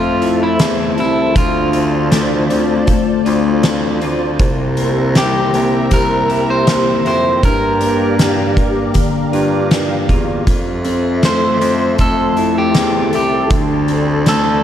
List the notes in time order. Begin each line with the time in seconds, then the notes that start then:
Already playing: F2 A3 C4 F4 A4 C5 E5 A5
0.22 E4, closed hi-hat
0.43 E4
0.59 E2 C4, snare, closed hi-hat
0.98 C2 E4, closed hi-hat
1.35 D2 D3 F4 D5, kick, closed hi-hat
1.73 C4, closed hi-hat
2.11 A3, snare, closed hi-hat
2.50 C4, closed hi-hat
2.87 A3, kick, closed hi-hat
3.25 D2 F4, closed hi-hat
3.63 C4, snare, closed hi-hat
4.01 D2 F4, closed hi-hat
4.39 C2 C3 G4 E5 A#5, kick, closed hi-hat
4.77 A#3, closed hi-hat
5.15 G3 G4, snare, closed hi-hat
5.53 C2 A#3, closed hi-hat
5.91 C2 G3 A#4, kick, closed hi-hat
6.29 E4, closed hi-hat
6.50 C5
6.67 C2 A#3, snare, closed hi-hat
7.05 F2 E4 C5, closed hi-hat
7.43 G2 A#4 D5 F5 A#5, kick, closed hi-hat
7.81 A#3, closed hi-hat
8.19 snare, closed hi-hat
8.57 A#3, kick, closed hi-hat
8.94 D3, kick, closed hi-hat
9.33 G2 F4, closed hi-hat
9.71 A#3, snare, closed hi-hat
10.09 E2 F4, kick, closed hi-hat
10.47 F2 A4 E5 A5 C6, kick, closed hi-hat
10.85 C4, closed hi-hat
11.23 A3 C5, snare, closed hi-hat
11.61 F2 C4, closed hi-hat
11.98 F2 A3 A4, kick, closed hi-hat
12.37 E4, closed hi-hat
12.58 G4
12.74 E2 C4, snare, closed hi-hat
13.13 C2 E4 G4, closed hi-hat
13.50 D2 D3 D5 C6, kick, closed hi-hat
13.88 C4, closed hi-hat
14.26 A3 A4, snare, closed hi-hat